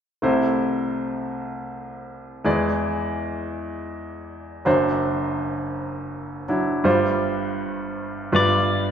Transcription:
0.22 grand piano C2 C3 A3 E4 C5
2.44 grand piano E2 E3 G#3 E4 D5
4.65 grand piano F#1 F#2 F#3 D4 C5
6.48 grand piano F#3 D4 E4
6.84 grand piano G1 G2 G3 F4 C5
8.32 grand piano G1 G2 G3 F4 B4, pedal steel guitar D5

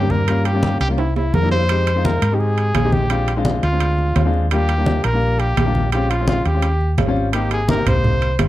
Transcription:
Already playing: fingered electric bass G2, trumpet G4
0.01 grand piano G3 A#3 C4 D4
0.10 trumpet A#4, high conga
0.28 grand piano G3 A#3 C#4 F4, high conga, high timbale
0.45 trumpet G4, high conga, high timbale
0.53 grand piano G3 A#3 C#4 F4
0.63 high conga, low timbale
0.80 fingered electric bass C2, trumpet G4, high conga, high timbale
0.89 grand piano G3 A#3 C#4 F4
0.98 trumpet E4, high conga, high timbale
1.16 trumpet E4, high conga, low timbale
1.34 fingered electric bass F2, trumpet A#4, high conga, low timbale
1.42 grand piano G3 A#3 D4 E4
1.51 trumpet C5, high conga, low timbale
1.69 grand piano G#3 C4 D#4 G4, high conga, high timbale
1.87 high conga, high timbale
1.95 grand piano G#3 C4 D#4 F4
2.04 trumpet A#4, high conga, low timbale
2.22 fingered electric bass G#2, high timbale
2.31 grand piano G#3 C4 D#4 G4, trumpet G4
2.39 trumpet G#4, high conga
2.58 high conga, high timbale
2.75 fingered electric bass A#1, high conga, high timbale, low timbale
2.84 grand piano G#3 C4 D#4 G4
2.92 trumpet G4, high conga
3.09 grand piano G#3 C4 D4 F4, high conga, high timbale
3.28 high conga, high timbale
3.36 grand piano G#3 C4 D4 F4
3.45 high conga, low timbale
3.63 fingered electric bass D2, trumpet F4, high conga, high timbale
3.72 grand piano G#3 C4 D4 G#4
3.80 high conga, high timbale
3.98 high conga
4.16 fingered electric bass D#2, high conga, high timbale, low timbale
4.25 grand piano G#3 C4 D4 F4
4.34 high conga
4.51 grand piano G3 A#3 D4 F4, trumpet G4, high conga, high timbale
4.69 high conga, high timbale
4.78 grand piano G3 A#3 D4 F4
4.86 high conga, low timbale
5.04 fingered electric bass A#1, trumpet A#4, high timbale
5.13 grand piano G3 A#3 D4 F4
5.22 high conga
5.39 trumpet G4, high conga, high timbale
5.57 fingered electric bass A#1, high conga, high timbale, low timbale
5.65 grand piano G3 A#3 D4 F4
5.75 high conga
5.92 grand piano G#3 C4 C#4 F4, trumpet G4, high conga, high timbale
6.10 trumpet F4, high conga, high timbale
6.19 grand piano G#3 C4 C#4 F4
6.28 trumpet F4, high conga, low timbale
6.45 fingered electric bass D#2, trumpet G4, high conga, high timbale
6.54 grand piano G#3 C4 C#4 F4
6.62 high conga, high timbale
6.81 high conga
6.98 fingered electric bass G#1, high conga, high timbale, low timbale
7.06 grand piano G3 C4 C#4 F4
7.16 high conga
7.32 grand piano A#3 C4 D#4 G4, trumpet G4, high conga, high timbale
7.51 trumpet G#4, high conga, high timbale
7.68 grand piano A#3 C4 D#4 G4, trumpet A#4, high conga, low timbale
7.77 grand piano A#3 C4 D#4 G4
7.86 fingered electric bass C2, trumpet C5, low conga, high timbale
8.04 high conga, low conga
8.22 high conga, high timbale
8.39 fingered electric bass G1, high conga, high timbale, low timbale

